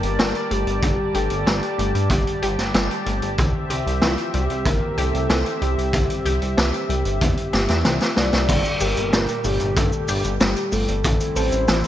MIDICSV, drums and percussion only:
0, 0, Header, 1, 2, 480
1, 0, Start_track
1, 0, Tempo, 638298
1, 623, Time_signature, 4, 2, 24, 8
1, 8929, End_track
2, 0, Start_track
2, 0, Title_t, "Drums"
2, 23, Note_on_c, 9, 42, 70
2, 98, Note_off_c, 9, 42, 0
2, 145, Note_on_c, 9, 38, 126
2, 145, Note_on_c, 9, 42, 82
2, 220, Note_off_c, 9, 38, 0
2, 220, Note_off_c, 9, 42, 0
2, 263, Note_on_c, 9, 42, 50
2, 338, Note_off_c, 9, 42, 0
2, 383, Note_on_c, 9, 42, 79
2, 459, Note_off_c, 9, 42, 0
2, 503, Note_on_c, 9, 42, 64
2, 579, Note_off_c, 9, 42, 0
2, 621, Note_on_c, 9, 36, 106
2, 621, Note_on_c, 9, 42, 87
2, 696, Note_off_c, 9, 36, 0
2, 696, Note_off_c, 9, 42, 0
2, 862, Note_on_c, 9, 42, 80
2, 937, Note_off_c, 9, 42, 0
2, 978, Note_on_c, 9, 42, 60
2, 1053, Note_off_c, 9, 42, 0
2, 1105, Note_on_c, 9, 42, 78
2, 1106, Note_on_c, 9, 38, 106
2, 1180, Note_off_c, 9, 42, 0
2, 1181, Note_off_c, 9, 38, 0
2, 1223, Note_on_c, 9, 42, 51
2, 1298, Note_off_c, 9, 42, 0
2, 1346, Note_on_c, 9, 42, 80
2, 1422, Note_off_c, 9, 42, 0
2, 1466, Note_on_c, 9, 42, 66
2, 1541, Note_off_c, 9, 42, 0
2, 1578, Note_on_c, 9, 36, 108
2, 1583, Note_on_c, 9, 42, 82
2, 1653, Note_off_c, 9, 36, 0
2, 1658, Note_off_c, 9, 42, 0
2, 1708, Note_on_c, 9, 42, 52
2, 1783, Note_off_c, 9, 42, 0
2, 1823, Note_on_c, 9, 42, 75
2, 1898, Note_off_c, 9, 42, 0
2, 1943, Note_on_c, 9, 38, 36
2, 1945, Note_on_c, 9, 42, 67
2, 2018, Note_off_c, 9, 38, 0
2, 2020, Note_off_c, 9, 42, 0
2, 2062, Note_on_c, 9, 42, 89
2, 2066, Note_on_c, 9, 38, 123
2, 2137, Note_off_c, 9, 42, 0
2, 2142, Note_off_c, 9, 38, 0
2, 2187, Note_on_c, 9, 42, 54
2, 2263, Note_off_c, 9, 42, 0
2, 2303, Note_on_c, 9, 42, 80
2, 2378, Note_off_c, 9, 42, 0
2, 2422, Note_on_c, 9, 42, 57
2, 2497, Note_off_c, 9, 42, 0
2, 2541, Note_on_c, 9, 42, 75
2, 2546, Note_on_c, 9, 36, 114
2, 2616, Note_off_c, 9, 42, 0
2, 2621, Note_off_c, 9, 36, 0
2, 2784, Note_on_c, 9, 42, 87
2, 2859, Note_off_c, 9, 42, 0
2, 2912, Note_on_c, 9, 42, 62
2, 2987, Note_off_c, 9, 42, 0
2, 3020, Note_on_c, 9, 38, 112
2, 3028, Note_on_c, 9, 42, 86
2, 3096, Note_off_c, 9, 38, 0
2, 3104, Note_off_c, 9, 42, 0
2, 3142, Note_on_c, 9, 42, 48
2, 3217, Note_off_c, 9, 42, 0
2, 3261, Note_on_c, 9, 42, 81
2, 3336, Note_off_c, 9, 42, 0
2, 3383, Note_on_c, 9, 42, 58
2, 3458, Note_off_c, 9, 42, 0
2, 3501, Note_on_c, 9, 36, 111
2, 3506, Note_on_c, 9, 42, 74
2, 3576, Note_off_c, 9, 36, 0
2, 3581, Note_off_c, 9, 42, 0
2, 3744, Note_on_c, 9, 42, 86
2, 3820, Note_off_c, 9, 42, 0
2, 3869, Note_on_c, 9, 42, 59
2, 3944, Note_off_c, 9, 42, 0
2, 3983, Note_on_c, 9, 38, 110
2, 3987, Note_on_c, 9, 42, 91
2, 4058, Note_off_c, 9, 38, 0
2, 4062, Note_off_c, 9, 42, 0
2, 4106, Note_on_c, 9, 42, 55
2, 4181, Note_off_c, 9, 42, 0
2, 4224, Note_on_c, 9, 42, 75
2, 4299, Note_off_c, 9, 42, 0
2, 4350, Note_on_c, 9, 42, 55
2, 4425, Note_off_c, 9, 42, 0
2, 4461, Note_on_c, 9, 36, 105
2, 4465, Note_on_c, 9, 42, 91
2, 4537, Note_off_c, 9, 36, 0
2, 4540, Note_off_c, 9, 42, 0
2, 4586, Note_on_c, 9, 42, 51
2, 4661, Note_off_c, 9, 42, 0
2, 4706, Note_on_c, 9, 42, 84
2, 4781, Note_off_c, 9, 42, 0
2, 4826, Note_on_c, 9, 42, 62
2, 4901, Note_off_c, 9, 42, 0
2, 4946, Note_on_c, 9, 38, 124
2, 4946, Note_on_c, 9, 42, 90
2, 5021, Note_off_c, 9, 38, 0
2, 5021, Note_off_c, 9, 42, 0
2, 5068, Note_on_c, 9, 42, 55
2, 5143, Note_off_c, 9, 42, 0
2, 5187, Note_on_c, 9, 42, 78
2, 5262, Note_off_c, 9, 42, 0
2, 5302, Note_on_c, 9, 42, 67
2, 5378, Note_off_c, 9, 42, 0
2, 5422, Note_on_c, 9, 42, 92
2, 5425, Note_on_c, 9, 36, 102
2, 5498, Note_off_c, 9, 42, 0
2, 5500, Note_off_c, 9, 36, 0
2, 5545, Note_on_c, 9, 42, 53
2, 5620, Note_off_c, 9, 42, 0
2, 5664, Note_on_c, 9, 42, 84
2, 5668, Note_on_c, 9, 38, 67
2, 5739, Note_off_c, 9, 42, 0
2, 5743, Note_off_c, 9, 38, 0
2, 5778, Note_on_c, 9, 42, 66
2, 5786, Note_on_c, 9, 38, 58
2, 5854, Note_off_c, 9, 42, 0
2, 5861, Note_off_c, 9, 38, 0
2, 5900, Note_on_c, 9, 38, 82
2, 5902, Note_on_c, 9, 42, 89
2, 5975, Note_off_c, 9, 38, 0
2, 5977, Note_off_c, 9, 42, 0
2, 6020, Note_on_c, 9, 42, 55
2, 6026, Note_on_c, 9, 38, 75
2, 6095, Note_off_c, 9, 42, 0
2, 6101, Note_off_c, 9, 38, 0
2, 6140, Note_on_c, 9, 38, 86
2, 6146, Note_on_c, 9, 42, 90
2, 6215, Note_off_c, 9, 38, 0
2, 6222, Note_off_c, 9, 42, 0
2, 6263, Note_on_c, 9, 38, 74
2, 6263, Note_on_c, 9, 42, 60
2, 6338, Note_off_c, 9, 38, 0
2, 6338, Note_off_c, 9, 42, 0
2, 6383, Note_on_c, 9, 36, 106
2, 6384, Note_on_c, 9, 69, 61
2, 6386, Note_on_c, 9, 49, 109
2, 6387, Note_on_c, 9, 42, 96
2, 6458, Note_off_c, 9, 36, 0
2, 6459, Note_off_c, 9, 69, 0
2, 6461, Note_off_c, 9, 49, 0
2, 6462, Note_off_c, 9, 42, 0
2, 6504, Note_on_c, 9, 69, 40
2, 6580, Note_off_c, 9, 69, 0
2, 6620, Note_on_c, 9, 69, 83
2, 6624, Note_on_c, 9, 46, 90
2, 6695, Note_off_c, 9, 69, 0
2, 6700, Note_off_c, 9, 46, 0
2, 6745, Note_on_c, 9, 42, 59
2, 6745, Note_on_c, 9, 69, 42
2, 6820, Note_off_c, 9, 69, 0
2, 6821, Note_off_c, 9, 42, 0
2, 6866, Note_on_c, 9, 38, 119
2, 6867, Note_on_c, 9, 42, 86
2, 6867, Note_on_c, 9, 69, 55
2, 6941, Note_off_c, 9, 38, 0
2, 6943, Note_off_c, 9, 42, 0
2, 6943, Note_off_c, 9, 69, 0
2, 6982, Note_on_c, 9, 42, 53
2, 6985, Note_on_c, 9, 69, 43
2, 7057, Note_off_c, 9, 42, 0
2, 7060, Note_off_c, 9, 69, 0
2, 7101, Note_on_c, 9, 46, 91
2, 7102, Note_on_c, 9, 69, 78
2, 7176, Note_off_c, 9, 46, 0
2, 7177, Note_off_c, 9, 69, 0
2, 7217, Note_on_c, 9, 42, 68
2, 7223, Note_on_c, 9, 69, 47
2, 7292, Note_off_c, 9, 42, 0
2, 7299, Note_off_c, 9, 69, 0
2, 7344, Note_on_c, 9, 36, 118
2, 7344, Note_on_c, 9, 42, 86
2, 7346, Note_on_c, 9, 69, 54
2, 7419, Note_off_c, 9, 36, 0
2, 7419, Note_off_c, 9, 42, 0
2, 7421, Note_off_c, 9, 69, 0
2, 7462, Note_on_c, 9, 69, 39
2, 7537, Note_off_c, 9, 69, 0
2, 7581, Note_on_c, 9, 69, 85
2, 7583, Note_on_c, 9, 46, 92
2, 7656, Note_off_c, 9, 69, 0
2, 7659, Note_off_c, 9, 46, 0
2, 7704, Note_on_c, 9, 42, 70
2, 7706, Note_on_c, 9, 69, 52
2, 7780, Note_off_c, 9, 42, 0
2, 7782, Note_off_c, 9, 69, 0
2, 7824, Note_on_c, 9, 42, 98
2, 7825, Note_on_c, 9, 69, 59
2, 7826, Note_on_c, 9, 38, 126
2, 7899, Note_off_c, 9, 42, 0
2, 7900, Note_off_c, 9, 69, 0
2, 7901, Note_off_c, 9, 38, 0
2, 7944, Note_on_c, 9, 42, 55
2, 7944, Note_on_c, 9, 69, 38
2, 8019, Note_off_c, 9, 42, 0
2, 8019, Note_off_c, 9, 69, 0
2, 8064, Note_on_c, 9, 69, 85
2, 8067, Note_on_c, 9, 46, 86
2, 8139, Note_off_c, 9, 69, 0
2, 8143, Note_off_c, 9, 46, 0
2, 8183, Note_on_c, 9, 69, 43
2, 8184, Note_on_c, 9, 42, 61
2, 8258, Note_off_c, 9, 69, 0
2, 8260, Note_off_c, 9, 42, 0
2, 8304, Note_on_c, 9, 69, 55
2, 8306, Note_on_c, 9, 36, 124
2, 8307, Note_on_c, 9, 42, 92
2, 8379, Note_off_c, 9, 69, 0
2, 8381, Note_off_c, 9, 36, 0
2, 8382, Note_off_c, 9, 42, 0
2, 8425, Note_on_c, 9, 42, 60
2, 8425, Note_on_c, 9, 69, 40
2, 8500, Note_off_c, 9, 42, 0
2, 8500, Note_off_c, 9, 69, 0
2, 8545, Note_on_c, 9, 69, 85
2, 8546, Note_on_c, 9, 46, 91
2, 8620, Note_off_c, 9, 69, 0
2, 8621, Note_off_c, 9, 46, 0
2, 8663, Note_on_c, 9, 42, 66
2, 8664, Note_on_c, 9, 69, 48
2, 8738, Note_off_c, 9, 42, 0
2, 8739, Note_off_c, 9, 69, 0
2, 8783, Note_on_c, 9, 69, 50
2, 8784, Note_on_c, 9, 38, 123
2, 8790, Note_on_c, 9, 42, 94
2, 8858, Note_off_c, 9, 69, 0
2, 8859, Note_off_c, 9, 38, 0
2, 8865, Note_off_c, 9, 42, 0
2, 8903, Note_on_c, 9, 42, 52
2, 8929, Note_off_c, 9, 42, 0
2, 8929, End_track
0, 0, End_of_file